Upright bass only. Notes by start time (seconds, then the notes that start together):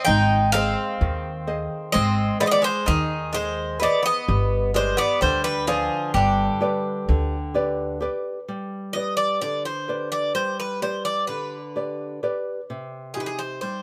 0.08 G#1
1.01 D#2
1.96 G#1
2.88 D#2
4.28 G1
5.22 D2
6.14 G1
7.09 D2